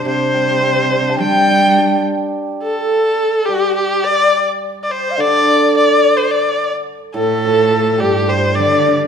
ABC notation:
X:1
M:2/4
L:1/16
Q:1/4=106
K:none
V:1 name="Erhu"
c8 | g6 z2 | z2 A6 | G2 G2 d3 z |
z3/2 d/2 c2 d4 | d3 c d3 z | z2 A6 | G2 c2 d3 z |]
V:2 name="Xiao"
c6- c3/2 a/2 | g6 z2 | z2 A6 | G2 G2 d3 z |
z2 c3/2 f/2 d4 | d3 c d3 z | z2 A4 A2 | G2 c2 d3 z |]
V:3 name="Hammered dulcimer" clef=bass
[C,G,CD]2 G,2 C2 D2 | G,2 D2 G4- | G4 z4 | G,8- |
G,4 D,4- | D,8 | z2 A,,2 F,2 A,2 | G,8 |]
V:4 name="Cello" clef=bass
C,8 | G,6 z2 | z8 | z8 |
z8 | z8 | z2 A,,6 | G,,4 D,3 z |]